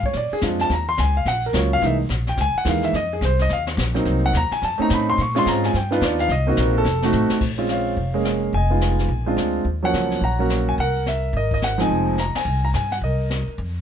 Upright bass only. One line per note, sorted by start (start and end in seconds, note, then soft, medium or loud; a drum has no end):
0.00 0.13 G#2 medium
0.14 0.30 A#2 medium
0.32 muted upright bass stroke soft
0.42 0.69 F2 medium
0.69 0.97 D#2 medium
0.98 1.25 C#2 medium
1.25 1.53 A#1 medium
1.53 1.81 C#2 loud
1.82 2.08 C2 medium
2.09 2.37 A#1 medium
2.37 2.54 C#2 medium
2.65 2.92 D#2 loud
2.93 3.20 F2 medium
3.21 3.49 C2 medium
3.49 3.76 D#2 medium
3.77 4.05 A#1 loud
4.05 4.33 C2 medium
4.33 4.50 D#2 medium
4.51 muted upright bass stroke soft
4.62 4.78 F2 medium
4.79 muted upright bass stroke soft
4.90 5.17 A2 loud
5.18 5.45 A#2 medium
5.46 5.73 G#2 medium
5.74 6.01 G2 medium
6.01 6.28 D#2 medium
6.29 6.57 C2 medium
6.57 6.84 A#1 loud
6.85 7.12 F1 medium
7.13 7.30 A1 loud
7.30 muted upright bass stroke soft
7.41 7.94 A#1 medium
7.97 8.50 F1 medium
8.53 9.06 F1 medium
9.08 9.35 A#1 medium
9.37 9.63 D2 medium
9.65 9.91 D#2 medium
9.93 10.20 C#2 medium
10.21 10.75 A#1 medium
10.78 11.31 C2 medium
11.33 11.87 G#1 medium
11.89 12.32 F1 medium
12.35 muted upright bass stroke soft
12.45 12.72 C2 medium
12.74 13.00 G2 medium
13.01 13.44 C2 medium
13.48 muted upright bass stroke soft
13.58 13.81 F2 medium